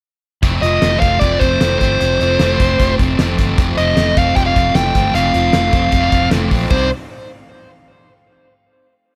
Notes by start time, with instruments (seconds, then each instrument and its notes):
0.43 fingered electric bass F1, overdriven electric guitar F2 C3 F3 A3 C4, kick, closed hi-hat
0.62 fingered electric bass F1, overdriven electric guitar F3 A3 C4, lead electric guitar D#5, closed hi-hat
0.82 fingered electric bass F1, overdriven electric guitar C3 F3 A3 C4, snare, closed hi-hat
1.00 fingered electric bass F1, overdriven electric guitar C4, lead electric guitar F5, kick, closed hi-hat
1.04 overdriven electric guitar F3 A3
1.19 fingered electric bass F1, overdriven electric guitar F2 C3 F3, clean electric guitar G3, lead electric guitar D5, kick, snare, closed hi-hat
1.24 overdriven electric guitar A3 C4
1.31 clean electric guitar A3
1.39 fingered electric bass F1, overdriven electric guitar C4, lead electric guitar C5, kick, closed hi-hat
1.43 overdriven electric guitar F3 A3
1.61 fingered electric bass F1, overdriven electric guitar C3 F3 A3 C4, snare, closed hi-hat
1.79 fingered electric bass G1, overdriven electric guitar A3 C4, lead electric guitar C5, kick, closed hi-hat
1.84 overdriven electric guitar F3
2.00 fingered electric bass F1, overdriven electric guitar F2 C3 F3 A3 C4, closed hi-hat
2.21 fingered electric bass F1, overdriven electric guitar F3 A3 C4, closed hi-hat
2.40 fingered electric bass F1, overdriven electric guitar C3 F3 A3 C4, snare, closed hi-hat
2.60 fingered electric bass F1, overdriven electric guitar F3 A3 C4, kick, closed hi-hat
2.79 fingered electric bass F1, overdriven electric guitar F2 C3 F3 A3 C4, kick, snare, closed hi-hat
2.99 fingered electric bass F1, overdriven electric guitar F3 A3 C4, kick, closed hi-hat
3.19 fingered electric bass F1, overdriven electric guitar C3 F3 A3 C4, snare, closed hi-hat
3.38 fingered electric bass G1, overdriven electric guitar F3 A3 C4, kick, closed hi-hat
3.58 fingered electric bass F1, overdriven electric guitar F2 C3 F3 A3 C4, kick, closed hi-hat
3.77 fingered electric bass F1, overdriven electric guitar F3 A3 C4, lead electric guitar D#5, closed hi-hat
3.97 fingered electric bass F1, overdriven electric guitar C3 F3 A3 C4, snare, closed hi-hat
4.17 fingered electric bass F1, overdriven electric guitar F3 A3 C4, lead electric guitar F5, kick, closed hi-hat
4.36 fingered electric bass F1, overdriven electric guitar F2 C3 F3 A3 C4, clean electric guitar G3, lead electric guitar G5, kick, closed hi-hat
4.46 clean electric guitar A3, lead electric guitar F5
4.56 fingered electric bass F1, overdriven electric guitar F3 A3 C4, kick, closed hi-hat
4.75 fingered electric bass F1, overdriven electric guitar C3 F3 A3 C4, lead electric guitar G5, snare, closed hi-hat
4.95 fingered electric bass G1, overdriven electric guitar F3 A3 C4, kick, closed hi-hat
5.14 fingered electric bass F1, overdriven electric guitar F2 C3 F3 A3 C4, lead electric guitar F5, closed hi-hat
5.34 fingered electric bass F1, overdriven electric guitar F3 A3 C4, closed hi-hat
5.53 fingered electric bass F1, overdriven electric guitar C3 F3 A3 C4, snare, closed hi-hat
5.73 fingered electric bass F1, overdriven electric guitar F3 A3 C4, kick, closed hi-hat
5.92 fingered electric bass F1, overdriven electric guitar F2 C3 F3 A3 C4, clean electric guitar G3, kick, closed hi-hat
6.02 clean electric guitar A3
6.12 fingered electric bass F1, overdriven electric guitar F3 A3 C4, kick, closed hi-hat
6.31 fingered electric bass F1, overdriven electric guitar C3 F3 A3 C4, snare, closed hi-hat
6.51 fingered electric bass A#1, overdriven electric guitar F3 A3 C4, kick, open hi-hat
6.70 fingered electric bass C2, overdriven electric guitar C3 G3 C4 D#4 G4 D5, lead electric guitar C5, kick, crash